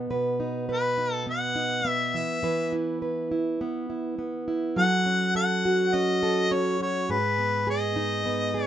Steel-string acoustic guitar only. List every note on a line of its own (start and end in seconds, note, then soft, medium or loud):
0.00 1.26 B3 medium
0.00 0.39 D#4 medium
0.10 2.22 B2 medium
0.10 0.68 B4 medium
0.40 0.97 D#4 medium
0.69 2.43 B4 medium
0.98 1.54 D#4 medium
1.27 1.84 B3 medium
1.56 2.21 D#4 medium
1.85 3.61 B3 medium
2.14 2.42 E3 medium
2.43 4.76 E3 medium
2.43 3.01 B4 medium
2.73 3.30 E4 medium
3.02 4.77 B4 medium
3.31 3.89 E4 medium
3.61 4.17 B3 medium
3.90 4.47 E4 medium
4.18 4.84 B3 medium
4.48 4.84 E4 medium
4.76 7.10 F#3 medium
4.76 5.34 A4 medium
5.06 5.93 C#4 medium
5.35 6.22 A4 medium
5.65 6.79 F#4 medium
5.94 6.50 C#4 medium
6.23 7.10 A4 medium
6.51 7.17 C#4 medium
6.81 7.17 F#4 medium
7.09 8.67 G#2 medium
7.09 7.66 G#4 medium
7.38 8.25 B3 medium
7.67 8.53 G#4 medium
7.96 8.67 D#4 medium
8.26 8.67 B3 medium
8.54 8.67 G#4 medium